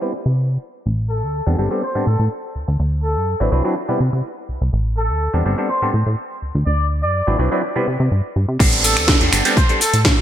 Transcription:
0.01 clav G3 B3 C4 E4 B4
0.26 analog synth bass C3
0.86 analog synth bass A1
1.10 trumpet section A4
1.23 analog synth bass D2
1.46 analog synth bass E2, clav G3 B3 C4 D4 A4
1.58 analog synth bass G1, clav G3 B3 C4 D4 A4
1.71 clav G3 B3 C4 D4 A4
1.83 trumpet section C5
1.95 analog synth bass A2, clav G3 B3 C4 D4 A4
2.07 analog synth bass A2, trumpet section A4
2.19 analog synth bass A2
2.55 analog synth bass D2
2.68 analog synth bass D2
2.80 analog synth bass D2
3.04 trumpet section A4
3.16 analog synth bass F#2
3.40 analog synth bass A1, clav F#3 C4 D4 E4 B4
3.52 analog synth bass C2, clav F#3 C4 D4 E4 B4
3.64 clav F#3 C4 D4 E4 B4
3.89 analog synth bass C3, clav G3 B3 C4 E4 B4
4.00 analog synth bass C3
4.13 analog synth bass C3
4.49 analog synth bass C2
4.61 analog synth bass C2
4.73 analog synth bass A1
4.97 trumpet section A4
5.09 analog synth bass D2
5.33 analog synth bass E2, clav G3 B3 C4 D4 A4
5.45 analog synth bass G1, clav G3 B3 C4 D4 A4
5.58 clav G3 B3 C4 D4 A4
5.70 trumpet section C5
5.82 analog synth bass A2, clav G3 B3 C4 D4 A4
5.94 analog synth bass A2
6.06 analog synth bass A2
6.42 analog synth bass D2
6.55 analog synth bass D2
6.66 analog synth bass D2, trumpet section D5
7.03 analog synth bass F#2, trumpet section D5
7.27 analog synth bass A1, clav F#3 C4 D4 E4 B4
7.39 analog synth bass C2, clav F#3 C4 D4 E4 B4
7.51 clav F#3 C4 D4 E4 B4
7.76 analog synth bass C3, clav G3 B3 C4 E4 B4
7.88 analog synth bass C3
8.00 analog synth bass C3
8.12 analog synth bass G2
8.36 analog synth bass G2
8.48 analog synth bass C3
8.59 analog synth bass A1, clav G3 B3 C4 D4 A4, kick, crash, tambourine, downlifter, shaker
8.73 closed hi-hat
8.84 trumpet section A4, open hi-hat, tambourine, shaker
8.97 analog synth bass D2, finger snap, closed hi-hat, tambourine, shaker
9.08 kick, snare, shaker
9.21 analog synth bass E2, clav G3 B3 C4 D4 A4, closed hi-hat, shaker
9.32 analog synth bass G1, clav G3 B3 C4 D4 A4, finger snap, open hi-hat, tambourine, shaker
9.45 clav G3 B3 C4 D4 A4, closed hi-hat, tambourine, shaker
9.57 trumpet section C5, kick, tambourine, shaker
9.69 clav G3 B3 C4 D4 A4, closed hi-hat, shaker
9.81 trumpet section A4, open hi-hat, tambourine, shaker
9.93 analog synth bass A2, closed hi-hat, tambourine, shaker
10.05 kick, snare, tambourine, shaker

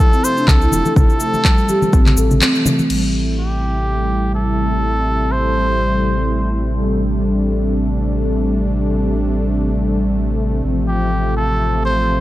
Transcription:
Already playing: analog synth pad C3 F3 A3, muted trumpet A4
0.00 kick
0.13 marimba C4, cabasa
0.24 muted trumpet C5, cabasa
0.37 marimba D4, cabasa
0.48 sub bass C2, muted trumpet A4, kick, clap, low conga, cabasa
0.61 marimba E4, cabasa
0.72 sub bass E1, high conga, cabasa
0.85 marimba A4, high conga, cabasa
0.96 sub bass A1, muted trumpet A4, kick, low conga, cabasa
1.10 cabasa
1.20 marimba A3, cabasa
1.34 high conga, cabasa
1.45 marimba G3, kick, clap, cabasa
1.58 cabasa
1.69 marimba G4, high conga, cabasa
1.82 high conga, cabasa
1.93 sub bass A1, marimba C4, kick, cabasa
2.06 clap, low conga, cabasa
2.17 sub bass A1, marimba A4, cabasa
2.31 low conga, cabasa
2.42 marimba C4, clap, high conga, cabasa
2.55 marimba E3, cabasa
2.66 marimba A3, high conga, low conga, cabasa
2.79 high conga, cabasa
2.90 sub bass A1, analog synth pad C3 G3 A3 E4, analog polysynth G3 C4 A4, crash
3.39 muted trumpet G4
4.35 muted trumpet A4
5.32 muted trumpet C5
6.77 analog polysynth G3 C4 A4, analog synth pad D4
10.64 sub bass A1, analog polysynth F3 C4 A4, analog synth pad F3 F4
10.88 muted trumpet G4
11.37 muted trumpet A4
11.85 muted trumpet C5

